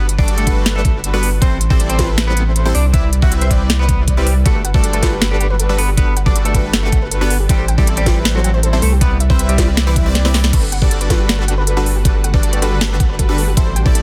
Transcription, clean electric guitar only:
0.19 D4 D5
0.38 A3 A4
0.75 A3 A4
1.13 B3 B4
1.41 C4 C5
1.70 C4 C5
1.89 C4 C5
2.27 B3 B4
2.75 D4 D5
2.94 E4 E5
3.22 F#4 F#5
3.41 C4 C5
3.79 B3 B4
4.18 G3 G4
4.46 A3 A4
4.74 A3 A4
4.93 A3 A4
5.31 G3 G4
5.78 B3 B4
5.97 B3 B4
6.26 D4 D5
6.45 A3 A4
6.83 A3 A4
7.21 B3 B4
7.49 G3 G4
7.78 G3 G4
7.97 G3 G4
8.35 F#3 F#4
8.82 A3 A4
9.01 B3 B4
9.30 C4 C5
9.49 G3 G4
9.87 E3 E4
10.25 C3 C4

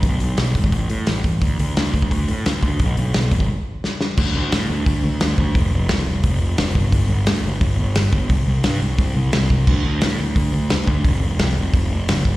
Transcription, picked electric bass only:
0.03 B1
0.21 B1
0.38 B1
0.55 G#1
0.72 A1
0.90 A2
1.08 A1
1.25 A1
1.42 D2
1.60 D2
1.77 D2
1.94 D2
2.11 D2
2.29 A2
2.47 D2
2.63 D2
2.80 B1
2.98 B1
3.15 B1
3.32 G#1
4.18 D2
4.36 D2
4.53 A2
4.70 D2
4.86 D2
5.04 D2
5.22 D2
5.38 D2
5.55 F1
5.74 F1
5.90 C2
6.07 F1
6.24 F1
6.41 F1
6.58 F1
6.75 G1
6.92 G1
7.09 G1
7.27 D2
7.44 G1
7.61 G1
7.79 G1
7.96 G1
8.13 G1
8.30 C2
8.47 C2
8.64 G2
8.81 C2
8.99 C2
9.16 C2
9.33 C2
9.50 C2
9.67 D2
9.85 D2
10.02 A2
10.19 D2
10.36 D2
10.53 D2
10.72 D2
10.88 D2
11.05 F1
11.22 F1
11.40 C2
11.57 F1
11.73 F1
11.91 F1
12.09 F#1
12.25 G1

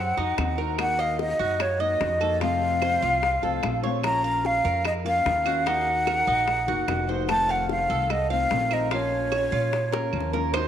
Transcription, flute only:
Already playing: F#5
0.81 F#5
1.00 F5
1.21 D#5
1.61 C#5
1.80 D#5
2.42 F5
4.05 A#5
4.46 F5
4.87 D#5
5.07 F5
5.68 F#5
7.30 A5
7.51 F#5
7.71 F5
8.11 D#5
8.31 F5
8.73 D#5
8.94 C#5

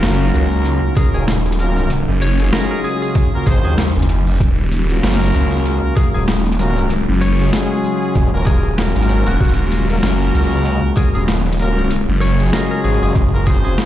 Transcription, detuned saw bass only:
0.03 F#1
0.34 C#2
1.14 D#1
2.08 F#1
3.47 G#1
3.64 D#2
3.96 F#1
4.40 D#1
5.03 F#1
5.34 C#2
6.14 D#1
7.08 F#1
8.15 D#1
8.34 D#1
8.96 G#1
9.27 D#1
9.40 D#1
10.03 F#1
10.34 C#2
11.15 D#1
12.08 F#1
12.84 G#1
13.02 F#1
13.33 F#1

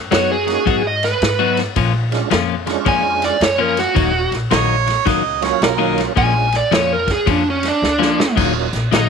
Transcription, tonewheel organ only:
0.46 A#3 C#4 D#4 F#4
2.11 G#3 C#4 D4 F4
2.66 G#3 C#4 D4 F4
5.41 F#3 A#3 C#4 F4
6.16 G#3 C#4 D4 F4
8.37 F#3 A#3 C#4 D#4 F4

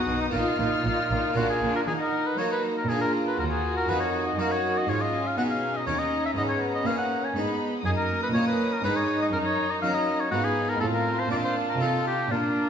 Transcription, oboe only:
Already playing: F#4
0.21 D#4
0.33 F4
1.36 F#4
1.50 G#4
1.76 A#4
1.87 G#4
2.01 A#4
2.27 B4
2.38 C#5
2.52 B4
2.77 A#4
2.89 G#4
3.01 A#4
3.27 B4
3.39 A#4
3.50 G#4
3.77 A#4
3.89 B4
4.00 C#5
4.27 D#5
4.40 A#4
4.52 C#5
4.78 D#5
4.89 C#5
5.01 D#5
5.27 F5
5.38 F#5
5.50 F5
5.76 D#5
5.87 C#5
5.99 D#5
6.26 E5
6.38 D#5
6.49 C#5
6.75 D#5
6.86 F5
6.98 F#5
7.25 G#5
7.86 G#4
7.97 A#4
8.23 B4
8.34 C#5
8.47 B4
8.73 A#4
8.84 B4
8.96 C#5
9.22 D#5
9.33 A#4
9.45 C#5
9.71 D#5
9.82 F5
9.94 D#5
10.20 C#5
10.31 F#4
10.44 G#4
10.69 A#4
10.80 A4
10.94 A#4
11.20 C5
11.31 D5
11.44 C5
11.70 A#4
11.81 A4
12.07 G4
12.31 F4

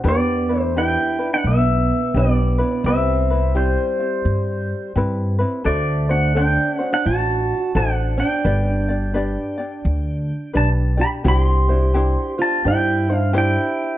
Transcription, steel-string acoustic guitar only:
0.07 B3
0.55 A3
0.77 E4
1.34 D4
1.48 B3
2.16 B3
2.86 C4
3.55 G3
5.67 A3
6.11 D4
6.36 D4
6.75 C#4
6.93 D4
7.06 F#4
7.75 D4
8.18 D4
10.55 D4
10.99 G4
11.25 F#4
11.36 G4
12.39 F4
12.66 E4
13.14 D4
13.36 E4

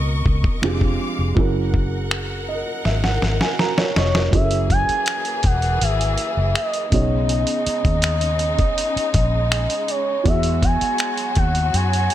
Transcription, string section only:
Already playing: A#4 D#5 C#6
0.62 G#3 F5 D6
1.37 A#4 F#5
4.33 E3 A#3 G#4
6.92 C#3 G#3 D#4
10.26 F#3 F#4

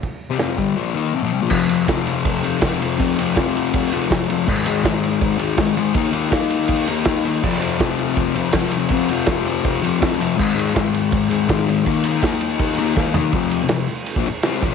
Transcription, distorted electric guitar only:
0.30 C3 G3
0.38 F2 C3 F3
0.58 G2 D3 G3
0.76 A#2 F3 A#3
0.95 D#3 A#3 D#4
1.14 F2 C3
1.23 A#2 F3
1.32 C3 G3
1.41 A#2 F3
1.49 F2 C3 F3
1.67 C3 F3
1.87 F2 C3 F3
2.43 C3 F3
2.61 F2 C3 F3
2.80 C3 F3
2.98 F2 C3 F3
3.17 C3 F3
3.36 F2 C3 F3
3.92 C3 F3
4.10 F2 C3 F3
4.29 C3 F3
4.48 G#2 D#3 G#3
4.67 D#3 G#3
4.84 G#2 D#3 G#3
5.38 D#3 G#3
5.57 G#2 D#3 G#3
5.76 D#3 G#3
5.94 D#3 A#3 D#4
6.11 A#3 D#4
6.31 D#3 A#3 D#4
6.88 A#3 D#4
7.05 D#3 A#3 D#4
7.25 A#3 D#4
7.43 F2 C3 F3
7.59 C3 F3
7.79 F2 C3 F3
8.35 C3 F3
8.54 F2 C3 F3
8.73 C3 F3
8.90 F2 C3 F3
9.11 C3 F3
9.29 F2 C3 F3
9.83 C3 F3
9.99 F2 C3 F3
10.19 C3 F3
10.36 G#2 D#3 G#3
10.55 D#3 G#3
10.75 G#2 D#3 G#3
11.29 D#3 G#3
11.49 G#2 D#3 G#3
11.67 D#3 G#3
11.84 D#3 A#3 D#4
12.05 A#3 D#4
12.23 D#3 A#3 D#4
12.78 A#3 D#4
12.95 D#3 A#3 D#4
13.14 A#3 D#4
13.33 F2 C3 F3
13.62 F2 C3
13.70 F2 C3
14.17 A#2 F3
14.28 muted distorted electric guitar stroke
14.45 C3 G3 C4
14.65 A#2 F3

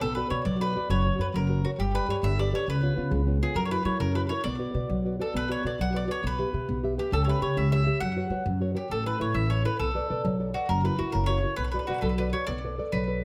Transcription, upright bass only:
0.02 B1
0.31 B2
0.46 B1
0.90 F#1
1.19 F#2
1.34 F#1
1.79 G1
2.08 G2
2.23 G1
2.67 C#2
3.11 C#2
3.55 F#2
3.85 F#3
4.00 F#2
4.45 B1
4.74 B2
4.90 B1
5.34 B1
5.64 B2
5.79 B1
6.24 B1
6.54 B2
6.69 B1
7.12 C#2
7.57 C#2
8.01 F#2
8.30 F#3
8.46 F#2
8.91 A1
9.20 A2
9.35 A1
9.80 B1
10.10 B2
10.25 B1
10.69 F#1
11.00 F#2
11.15 F#1
11.58 B1
11.89 B2
12.02 B1
12.48 B1
12.93 B1

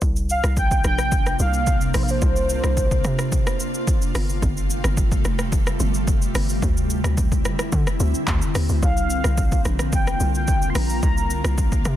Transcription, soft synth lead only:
0.31 F5
0.59 G5
0.86 G5
1.41 F5
1.96 C5
2.03 F5
2.10 C5
8.84 F5
9.94 G5
10.36 G5
10.70 C6
10.77 A#5

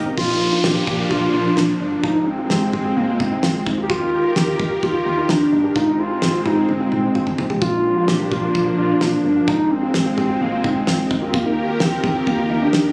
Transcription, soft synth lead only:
0.17 F4
0.64 G4
1.10 F4
1.33 F4
1.57 D4
1.80 D4
2.03 D#4
2.26 C4
2.50 C4
2.73 C4
2.96 A#3
3.20 C4
3.83 G4
3.89 F4
4.36 G4
4.83 F4
5.06 F4
5.29 D4
5.76 D#4
5.99 F4
6.46 D#4
6.69 C4
6.92 C4
7.62 F4
8.08 G4
8.31 F4
8.78 F4
9.01 D4
9.24 D4
9.48 D#4
9.71 C4
10.17 C4
10.41 A#3
10.64 C4
11.27 C4
11.34 A#3
11.80 C4
12.27 A#3
12.62 D4

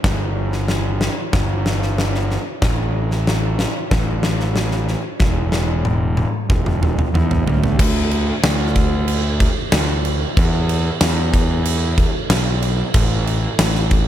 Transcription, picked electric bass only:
0.04 G1
1.33 G1
2.62 A1
3.91 A1
5.20 E1
6.49 E1
7.14 E2
7.46 D2
7.79 D2
8.43 D2
9.73 D2
10.37 E2
11.01 E2
12.30 B1
12.94 A1
13.59 A1

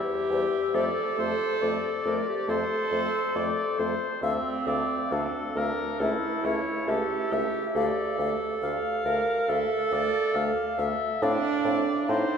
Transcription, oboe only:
Already playing: E5
0.75 D5
1.19 C5
1.62 D5
2.49 C5
3.36 D5
3.78 C5
4.22 E5
4.68 D5
5.13 A4
5.57 A#4
6.00 A4
6.45 C#5
6.89 A4
7.33 E5
7.76 D5
8.64 F5
9.50 E5
9.93 D5
10.36 F5
10.79 E5
11.23 D5
12.09 C5

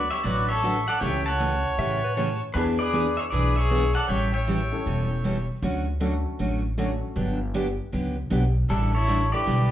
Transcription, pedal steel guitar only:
Already playing: D5
0.11 C#5 E5
0.24 B4 D5
0.49 C#5 E5
0.88 D5 F#5
1.01 E5 G5
1.26 F#5 A5
2.54 G#4 B4
2.79 B4 D5
3.17 C#5 E5
3.31 B4 D5
3.56 C#5 E5
3.95 D5 F#5
4.08 E5 G5
4.34 E5 G5
8.70 E4 A4
8.95 A4 C#5
9.32 B4 D5

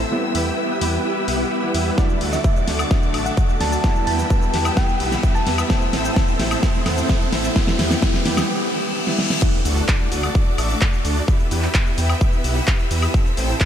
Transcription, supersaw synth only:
0.12 B3 E4 G4 B4 E5
0.35 B3 E4 G4 B4 G5
0.58 B3 E4 G4 B4 E5
0.81 B3 E4 G4 B4 G5
1.05 B3 E4 G4 B4 E5
1.28 B3 E4 G4 B4 F#5
1.51 B3 E4 G4 B4 E5
1.75 B3 E4 G4 B4 E5
1.98 A3 D4 F#4 A4 D5
2.21 A3 D4 F#4 A4 F#5
2.44 A3 D4 F#4 A4 D5
2.68 A3 D4 F#4 A4 F#5
2.91 A3 D4 F#4 A4 D5
3.14 A3 D4 F#4 A4 E5
3.37 A3 D4 F#4 A4 D5
3.61 A3 D4 F#4 A4 D5
3.84 B3 E4 G4 B4 E5
4.07 B3 E4 G4 B4 G5
4.30 B3 E4 G4 B4 E5
4.54 B3 E4 G4 B4 G5
4.77 B3 E4 G4 B4 E5
5.00 B3 E4 G4 B4 F#5
5.23 B3 E4 G4 B4 E5
5.47 B3 E4 G4 B4 E5
5.70 C4 E4 A4 C5 E5
5.93 C4 E4 A4 C5 G5
6.16 C4 E4 A4 C5 E5
6.40 C4 E4 A4 C5 G5
6.63 C4 E4 A4 C5 E5
6.86 C4 E4 A4 C5 F#5
7.09 C4 E4 A4 C5 E5
7.33 C4 E4 A4 C5 E5
7.56 B3 E4 G4 B4 E5
7.79 B3 E4 G4 B4 G5
8.02 B3 E4 G4 B4 E5
8.26 B3 E4 G4 B4 G5
9.42 A3 D4 F#4 A4 D5
9.65 A3 D4 F#4 A4 F#5
9.88 A3 D4 F#4 A4 D5
10.12 A3 D4 F#4 A4 F#5
10.35 A3 D4 F#4 A4 D5
10.58 A3 D4 F#4 A4 E5
10.82 A3 D4 F#4 A4 D5
11.05 A3 D4 F#4 A4 D5
11.28 B3 E4 G4 B4 E5
11.51 B3 E4 G4 B4 G5
11.75 B3 E4 G4 B4 E5
11.98 B3 E4 G4 B4 G5
12.21 B3 E4 G4 B4 E5
12.44 B3 E4 G4 B4 F#5
12.68 B3 E4 G4 B4 E5
12.91 B3 E4 G4 B4 E5
13.14 C4 E4 A4 C5 E5
13.37 C4 E4 A4 C5 G5
13.61 C4 E4 A4 C5 E5

